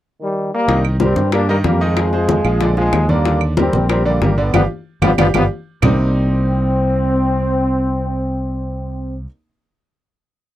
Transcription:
0.21 0.50 D#3 medium
0.21 0.51 G3 medium
0.54 0.83 G3 medium
0.54 0.83 A#3 medium
0.68 1.13 C2 medium
0.68 0.94 D#3 medium
0.68 0.95 D#4 medium
0.68 0.95 D#5 medium
0.68 high bongo medium
0.84 high conga soft
0.84 claves medium
1.00 1.27 G3 medium
1.00 1.30 G3 medium
1.00 1.31 C4 medium
1.00 1.27 G4 medium
1.00 1.27 A#4 medium
1.00 high bongo medium
1.00 high conga medium
1.16 1.61 G2 medium
1.16 high conga medium
1.32 1.46 G3 medium
1.32 1.48 A#3 medium
1.32 1.48 D4 loud
1.32 1.46 G4 medium
1.32 1.46 A#4 medium
1.32 high bongo medium
1.32 high conga soft
1.32 claves medium
1.48 1.62 D#3 medium
1.48 1.57 G3 medium
1.48 1.56 A#3 medium
1.48 1.62 D#4 medium
1.48 1.62 D#5 medium
1.48 high conga soft
1.64 2.39 F2 medium
1.64 1.78 G3 medium
1.64 1.80 G3 medium
1.64 1.80 A#3 medium
1.64 1.78 G4 medium
1.64 1.78 A#4 medium
1.64 high bongo medium
1.64 low bongo medium
1.64 high conga medium
1.80 2.07 D#3 medium
1.80 2.77 F3 medium
1.80 2.76 G#3 loud
1.80 2.07 D#4 medium
1.80 2.08 D#5 medium
1.80 high conga soft
1.97 high bongo medium
1.97 high conga soft
1.97 claves medium
2.13 2.39 G#3 medium
2.13 2.39 G#4 medium
2.13 2.40 C5 medium
2.13 high bongo soft
2.13 high conga soft
2.29 high bongo medium
2.29 high conga medium
2.44 2.90 A#1 medium
2.44 2.58 F3 medium
2.44 2.58 F4 medium
2.44 2.58 G#4 medium
2.44 high bongo soft
2.44 high conga soft
2.44 claves medium
2.61 2.74 D3 medium
2.61 2.74 D4 medium
2.61 2.75 D5 medium
2.61 high bongo medium
2.61 high conga soft
2.77 3.04 F3 medium
2.77 3.07 F3 medium
2.77 3.07 G#3 loud
2.77 3.04 F4 medium
2.77 3.04 G#4 medium
2.77 high bongo soft
2.77 high conga soft
2.93 3.68 D#2 medium
2.93 high bongo medium
2.93 low bongo medium
2.93 claves medium
3.09 3.22 D3 medium
3.09 3.42 G3 medium
3.09 3.42 A#3 medium
3.09 3.22 D4 medium
3.09 3.23 D5 medium
3.09 high conga medium
3.25 3.52 D3 medium
3.25 3.52 D4 medium
3.25 3.52 D5 medium
3.25 high bongo medium
3.25 high conga soft
3.41 high conga soft
3.41 claves medium
3.57 3.84 G3 medium
3.57 3.88 G3 medium
3.57 3.88 C4 medium
3.57 3.84 G4 medium
3.57 3.84 A#4 medium
3.57 high bongo medium
3.57 high conga loud
3.73 4.18 A#1 medium
3.73 high conga medium
3.89 4.03 G3 medium
3.89 4.05 G3 medium
3.89 4.05 C4 medium
3.89 4.03 G4 medium
3.89 4.03 A#4 medium
3.89 high bongo medium
3.89 high conga soft
3.89 claves medium
4.05 4.19 D3 medium
4.05 4.21 G3 medium
4.05 4.21 A#3 medium
4.05 4.19 D4 medium
4.05 4.19 D5 medium
4.05 high conga soft
4.22 4.52 G1 medium
4.22 4.35 G3 medium
4.22 4.37 G3 medium
4.22 4.37 A#3 medium
4.22 4.35 G4 medium
4.22 4.35 A#4 medium
4.22 high bongo medium
4.22 low bongo medium
4.22 high conga medium
4.37 4.51 D3 medium
4.37 4.53 G3 medium
4.37 4.53 B3 medium
4.37 4.51 D4 medium
4.37 4.51 D5 medium
4.37 high conga soft
4.54 4.66 G1 medium
4.54 4.62 F3 medium
4.54 4.62 G3 medium
4.54 4.62 B3 medium
4.54 4.65 D4 medium
4.54 4.64 F4 medium
4.54 4.64 G4 medium
4.54 high bongo medium
4.54 high conga loud
4.54 claves medium
5.02 5.14 G1 medium
5.02 5.11 F3 loud
5.02 5.11 G3 medium
5.02 5.11 B3 medium
5.02 5.13 D4 medium
5.02 5.12 F4 medium
5.02 5.12 G4 medium
5.02 high bongo loud
5.02 high conga medium
5.02 claves loud
5.18 5.30 G1 medium
5.18 5.27 F3 medium
5.18 5.26 G3 medium
5.18 5.26 B3 medium
5.18 5.29 D4 loud
5.18 5.29 F4 medium
5.18 5.29 G4 loud
5.18 high bongo loud
5.18 high conga medium
5.18 claves medium
5.34 5.47 G1 medium
5.34 5.43 F3 medium
5.34 5.43 G3 medium
5.34 5.43 B3 medium
5.34 5.45 D4 medium
5.34 5.45 F4 medium
5.34 5.45 G4 medium
5.34 high bongo medium
5.34 high conga medium
5.34 claves medium
5.82 9.25 C2 medium
5.82 9.25 C3 medium
5.82 9.25 G3 medium
5.82 9.25 A#3 medium
5.82 9.25 C4 medium
5.82 9.17 C4 medium
5.82 9.25 D4 medium
5.82 9.26 D#4 loud
5.82 low bongo medium
5.82 low conga loud
5.82 claves medium

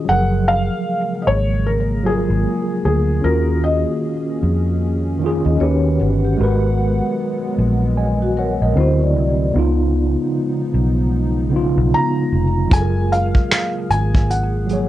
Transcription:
0.00 0.10 D#3 medium
0.05 0.68 F#1 loud
0.05 3.21 C#3 medium
0.05 1.31 F3 medium
0.05 1.30 F#3 medium
0.05 3.21 G#3 medium
0.05 5.57 A#3 medium
0.05 5.57 G#4 medium
0.05 0.49 F#5 loud
0.10 1.33 G#4 medium
0.10 1.34 A#4 medium
0.48 1.24 F5 loud
1.22 1.27 D#5 medium
1.27 2.26 G#1 loud
1.27 1.67 C#5 loud
1.66 2.07 A#4 medium
2.03 2.99 F#3 medium
2.03 3.00 F4 medium
2.03 2.84 G#4 medium
2.08 3.02 G#4 medium
2.08 3.03 A#4 medium
2.30 2.44 G#1 medium
2.85 3.21 D2 medium
2.85 3.25 G#4 medium
3.19 4.45 D#3 medium
3.19 4.46 C#4 medium
3.19 6.36 C#4 medium
3.23 3.84 D#2 loud
3.23 8.72 D#3 medium
3.23 4.48 F4 medium
3.23 4.49 F#4 medium
3.23 3.61 A#4 medium
3.64 5.17 D#5 medium
4.43 5.42 F2 medium
5.20 5.55 D#3 medium
5.20 5.56 C#4 medium
5.24 5.62 F4 medium
5.24 5.63 G#4 loud
5.45 5.60 D#2 medium
5.45 5.60 D#5 medium
5.56 6.25 D#3 medium
5.56 6.26 C#4 medium
5.56 6.27 F#4 medium
5.60 5.97 D#2 medium
5.60 6.28 G4 medium
5.60 6.28 B4 medium
5.60 5.98 C#5 medium
5.60 8.73 F#5 medium
6.00 6.37 G1 medium
6.00 6.23 B4 medium
6.25 6.62 G4 medium
6.37 7.00 G#1 loud
6.37 8.74 F#3 medium
6.37 7.62 G#3 medium
6.37 8.74 G#3 medium
6.37 8.74 B3 medium
6.37 7.63 F#4 medium
6.41 7.64 A#4 medium
6.41 7.65 B4 loud
7.58 8.57 A#1 medium
7.97 8.35 D#5 medium
7.97 8.35 G#5 medium
8.22 8.36 F#4 medium
8.37 8.75 A#4 medium
8.37 8.61 C#5 medium
8.37 8.61 F#5 medium
8.62 8.76 A#1 medium
8.62 8.99 A#4 medium
8.62 8.99 D#5 medium
8.73 9.16 D2 loud
8.73 9.42 D3 medium
8.73 9.43 C4 medium
8.73 9.00 C5 medium
8.78 9.44 E4 medium
8.78 9.45 F#4 medium
9.01 9.53 D5 medium
9.16 9.53 C2 medium
9.52 10.15 C#2 loud
9.52 10.77 C#3 medium
9.52 14.89 C#3 medium
9.52 12.68 F3 medium
9.52 14.89 G#3 medium
9.52 10.78 B3 medium
9.52 12.68 B3 medium
9.52 12.68 D#4 medium
9.56 10.79 D#4 medium
9.56 10.81 F4 medium
10.74 11.73 B1 medium
11.50 12.46 C#3 medium
11.50 12.47 B3 medium
11.54 12.48 D#4 medium
11.54 12.49 F4 loud
11.77 11.91 B1 medium
11.94 12.75 A#5 loud
12.32 12.69 F1 medium
12.68 13.31 F#1 loud
12.68 13.93 F#3 medium
12.68 14.89 A#3 medium
12.68 13.94 F4 medium
12.68 14.89 G#4 medium
12.68 kick loud
12.72 13.95 G#4 medium
12.72 12.81 A4 medium
12.72 13.13 G#5 loud
12.72 closed hi-hat medium
12.81 14.00 A#4 medium
13.12 13.93 F5 medium
13.12 closed hi-hat medium
13.35 kick medium
13.51 finger snap medium
13.51 snare loud
13.51 closed hi-hat medium
13.90 14.89 G#1 medium
13.90 14.31 G#5 medium
13.90 closed hi-hat medium
14.15 kick medium
14.15 closed hi-hat soft
14.30 14.89 F#5 medium
14.30 closed hi-hat medium
14.66 14.89 F3 medium
14.66 14.89 F#3 medium
14.66 closed hi-hat medium
14.71 14.89 G#4 medium
14.71 14.89 C#5 medium

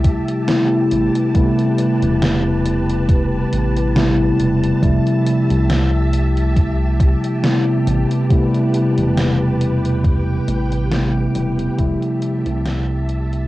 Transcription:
0.00 0.19 C2 medium
0.00 0.43 C3 medium
0.00 0.43 F3 medium
0.00 0.43 G3 medium
0.00 0.44 A3 medium
0.00 0.44 E4 medium
0.00 4.79 G4 medium
0.00 0.89 E5 medium
0.00 9.57 A5 loud
0.04 kick loud
0.04 closed hi-hat medium
0.28 closed hi-hat medium
0.47 1.30 C3 medium
0.47 1.30 G3 medium
0.47 1.30 A3 medium
0.47 1.31 B3 medium
0.47 1.31 E4 loud
0.47 snare loud
0.47 closed hi-hat medium
0.91 1.10 A1 medium
0.91 4.79 B4 medium
0.91 closed hi-hat medium
1.15 closed hi-hat medium
1.34 3.91 C3 medium
1.34 3.91 G3 medium
1.34 3.91 A3 medium
1.34 3.92 B3 medium
1.34 3.92 E4 medium
1.34 kick loud
1.34 closed hi-hat medium
1.59 closed hi-hat soft
1.78 closed hi-hat medium
2.02 3.45 E1 medium
2.02 closed hi-hat medium
2.22 snare loud
2.22 closed hi-hat medium
2.65 closed hi-hat medium
2.90 closed hi-hat medium
3.09 kick loud
3.09 closed hi-hat medium
3.53 4.32 A1 medium
3.53 closed hi-hat medium
3.77 closed hi-hat medium
3.95 4.78 C3 medium
3.95 4.78 G3 medium
3.95 4.78 A3 medium
3.95 4.78 B3 medium
3.95 4.79 E4 medium
3.95 snare loud
3.95 closed hi-hat medium
4.39 4.74 E1 medium
4.39 closed hi-hat medium
4.63 closed hi-hat medium
4.81 5.01 F1 loud
4.81 7.38 C3 medium
4.81 7.39 F3 medium
4.81 7.39 G3 medium
4.81 7.39 A3 medium
4.81 7.40 E4 medium
4.81 13.48 G4 medium
4.81 7.84 E5 medium
4.81 kick loud
4.81 closed hi-hat medium
5.07 closed hi-hat soft
5.26 closed hi-hat medium
5.50 7.15 C2 medium
5.50 closed hi-hat soft
5.70 snare loud
5.70 closed hi-hat medium
6.13 closed hi-hat medium
6.37 closed hi-hat medium
6.57 kick loud
6.57 closed hi-hat medium
7.00 kick loud
7.00 closed hi-hat medium
7.24 closed hi-hat medium
7.43 8.25 C3 medium
7.43 8.26 G3 medium
7.43 8.26 A3 medium
7.43 8.26 B3 medium
7.43 8.26 E4 medium
7.43 snare loud
7.43 closed hi-hat medium
7.87 8.06 A1 loud
7.87 11.75 B4 medium
7.87 closed hi-hat medium
8.11 closed hi-hat medium
8.29 10.86 C3 medium
8.29 10.86 G3 medium
8.29 10.87 A3 medium
8.29 10.87 B3 medium
8.29 10.87 E4 medium
8.29 kick loud
8.29 closed hi-hat medium
8.54 closed hi-hat soft
8.74 closed hi-hat medium
8.98 10.41 E1 medium
8.98 closed hi-hat medium
9.17 snare loud
9.17 closed hi-hat medium
9.61 11.76 G5 medium
9.61 closed hi-hat medium
9.85 closed hi-hat soft
10.04 kick loud
10.04 closed hi-hat medium
10.48 11.28 A1 medium
10.48 closed hi-hat medium
10.72 closed hi-hat soft
10.91 11.73 C3 medium
10.91 11.74 G3 medium
10.91 11.74 A3 medium
10.91 11.74 B3 medium
10.91 11.74 E4 medium
10.91 snare loud
10.91 closed hi-hat medium
11.35 11.69 E1 loud
11.35 closed hi-hat medium
11.59 closed hi-hat medium
11.77 11.97 F1 loud
11.77 13.48 C3 medium
11.77 13.48 F3 medium
11.77 13.48 G3 medium
11.77 13.48 A3 medium
11.77 13.48 E4 loud
11.77 13.48 E5 medium
11.77 13.48 A5 loud
11.77 kick loud
11.77 closed hi-hat medium
12.02 closed hi-hat soft
12.22 closed hi-hat medium
12.46 13.48 C2 medium
12.46 closed hi-hat medium
12.65 snare loud
12.65 closed hi-hat medium
13.09 closed hi-hat medium
13.33 closed hi-hat medium

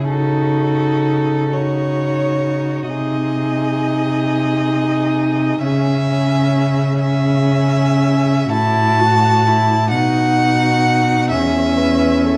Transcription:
0.00 2.87 C#3 soft
0.00 0.13 G#4 soft
0.09 1.51 D#4 soft
0.09 1.50 F#4 soft
0.09 1.55 A4 medium
1.50 2.88 D#4 soft
1.50 2.91 F#4 soft
1.50 2.88 C#5 medium
2.89 5.60 C3 soft
2.89 5.60 D#4 soft
2.89 5.63 G#4 soft
2.89 5.59 D#5 medium
5.63 8.46 C#3 soft
5.63 6.98 C#4 soft
5.63 6.98 G#4 medium
5.63 6.97 E5 medium
7.00 8.48 C#4 soft
7.00 8.47 G#4 soft
7.00 8.48 E5 medium
8.50 9.93 A2 medium
8.50 9.01 E4 soft
8.50 9.88 F#4 medium
8.50 9.90 A5 medium
9.00 9.48 F#4 soft
9.47 9.92 E4 soft
9.91 11.32 B2 medium
9.91 11.34 D#4 medium
9.91 11.29 F#4 medium
9.91 11.28 F#5 medium
11.31 12.37 E2 medium
11.31 12.37 C#4 medium
11.31 11.79 G#4 medium
11.31 12.37 E5 medium
11.77 12.26 B4 medium
12.24 12.37 A4 medium

